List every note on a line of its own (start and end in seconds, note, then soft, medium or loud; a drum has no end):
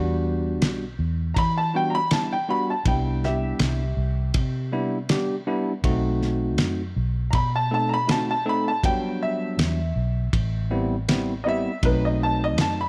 0.00 0.62 E2 loud
0.00 0.83 G3 loud
0.00 0.83 B3 medium
0.00 0.84 D4 medium
0.00 0.84 F#4 loud
0.62 0.95 B1 medium
0.62 snare loud
0.62 ride bell medium
0.99 1.32 E2 medium
1.34 2.87 E3 loud
1.34 1.39 A#5 medium
1.34 1.56 B5 loud
1.34 kick loud
1.34 ride bell medium
1.58 1.73 A5 medium
1.74 1.99 G3 medium
1.74 1.98 B3 medium
1.74 1.99 D4 medium
1.74 1.99 F#4 medium
1.74 1.94 G5 medium
1.90 1.94 A#5 medium
1.95 2.11 B5 loud
2.11 2.36 G3 medium
2.11 2.36 B3 medium
2.11 2.36 D4 medium
2.11 2.36 E4 medium
2.11 2.30 A5 medium
2.11 snare loud
2.11 ride bell medium
2.33 2.48 G5 medium
2.49 2.73 G3 medium
2.49 2.73 B3 medium
2.49 2.73 D4 medium
2.49 2.73 F#4 medium
2.49 2.68 B5 medium
2.70 2.86 A5 medium
2.85 3.52 C2 medium
2.85 3.82 G3 medium
2.85 3.82 B3 medium
2.85 3.82 D4 medium
2.85 3.82 E4 medium
2.85 3.23 G5 medium
2.85 kick loud
2.85 ride bell medium
3.24 4.70 G4 medium
3.24 4.70 E5 medium
3.24 snare soft
3.59 3.94 C2 medium
3.59 snare loud
3.59 ride bell medium
3.97 4.31 C2 medium
4.34 5.68 C3 medium
4.34 kick loud
4.34 ride bell medium
4.72 4.97 G3 medium
4.72 4.97 B3 medium
4.72 4.97 D4 medium
4.72 4.97 E4 loud
5.09 5.35 G3 medium
5.09 5.34 B3 medium
5.09 5.35 D4 medium
5.09 5.35 G4 medium
5.09 snare loud
5.09 ride bell medium
5.47 5.72 G3 loud
5.47 5.72 B3 medium
5.47 5.72 D4 loud
5.47 5.72 E4 loud
5.84 6.59 B1 medium
5.84 6.81 A3 loud
5.84 6.80 C4 medium
5.84 6.80 D#4 medium
5.84 6.81 F#4 loud
5.84 kick loud
5.84 ride bell medium
6.22 snare soft
6.58 6.92 F#2 medium
6.58 snare loud
6.58 ride bell medium
6.96 7.30 B1 medium
7.31 8.84 B2 loud
7.31 7.35 A#5 medium
7.31 kick loud
7.31 ride bell medium
7.35 7.53 B5 loud
7.56 7.71 A5 medium
7.71 7.96 A3 medium
7.71 7.96 C4 medium
7.71 7.96 D#4 medium
7.71 7.96 A4 medium
7.71 7.91 A5 medium
7.89 7.93 A#5 medium
7.94 8.09 B5 loud
8.07 8.33 A3 medium
8.07 8.33 C4 medium
8.07 8.33 D#4 medium
8.07 8.33 F#4 medium
8.07 8.29 A5 medium
8.07 snare loud
8.07 ride bell medium
8.31 8.46 A5 medium
8.45 8.70 A3 medium
8.45 8.71 C4 medium
8.45 8.71 D#4 medium
8.45 8.71 A4 medium
8.49 8.66 B5 medium
8.68 8.84 A5 medium
8.83 9.50 E2 medium
8.83 9.80 F#3 medium
8.83 9.79 G3 medium
8.83 9.80 B3 medium
8.83 9.80 D4 medium
8.83 9.21 G5 medium
8.83 kick loud
8.83 ride bell medium
9.23 10.68 E5 medium
9.58 9.92 E2 loud
9.58 snare loud
9.58 ride bell medium
9.96 10.29 B1 medium
10.33 11.66 A1 loud
10.33 kick loud
10.33 ride bell medium
10.71 10.95 G3 medium
10.71 10.95 B3 medium
10.71 10.95 C4 medium
10.71 10.95 E4 loud
11.08 11.33 G3 medium
11.08 11.33 B3 medium
11.08 11.33 C4 medium
11.08 11.33 E4 medium
11.08 snare loud
11.08 ride bell medium
11.44 11.70 G3 medium
11.44 11.70 B3 medium
11.44 11.70 C4 medium
11.44 11.71 E4 loud
11.44 11.48 D#5 medium
11.48 11.83 E5 loud
11.83 12.58 B1 loud
11.83 12.79 F#3 medium
11.83 12.79 A3 medium
11.83 12.79 C4 medium
11.83 12.79 D#4 medium
11.83 12.02 B4 loud
11.83 kick loud
11.83 ride bell medium
12.05 12.21 D#5 medium
12.23 12.40 A5 medium
12.44 12.59 D#5 medium
12.58 12.89 F#2 loud
12.58 12.78 A5 medium
12.58 snare loud
12.58 ride bell medium
12.81 12.89 B5 medium